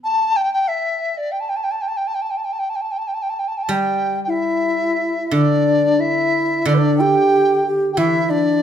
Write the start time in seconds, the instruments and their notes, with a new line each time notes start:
0.03 dizi A5
0.36 dizi G5
0.53 dizi G5
0.67 dizi E5
1.14 dizi D5 E5
1.31 dizi G5
1.40 dizi A5
1.49 dizi G5
1.56 dizi A5
1.63 dizi G5
1.71 dizi A5
1.81 dizi G5
1.88 dizi A5
1.96 dizi G5
2.07 dizi A5
2.14 dizi G5
2.21 dizi A5
2.30 dizi G5
2.37 dizi A5
2.44 dizi G5
2.52 dizi A5
2.58 dizi G5
2.69 dizi A5
2.75 dizi G5
2.81 dizi A5
2.91 dizi G5
2.98 dizi A5
3.07 dizi G5
3.14 dizi A5
3.22 dizi G5
3.29 dizi A5
3.39 dizi G5
3.47 dizi A5
3.57 dizi G5
3.62 dizi A5
3.69 guzheng G3, dizi G5
4.24 xiao E4, dizi G5
4.29 dizi E5
5.27 dizi E5
5.31 guzheng D3, xiao D4, dizi D5
5.99 xiao E4, dizi E5
6.65 guzheng D3, xiao D4, dizi D5
6.74 dizi B4 D5
6.97 xiao G4, dizi G5
7.67 xiao G4
7.93 xiao G4, dizi G5
7.97 guzheng E3, xiao E4, dizi E5
8.29 xiao D4, dizi D5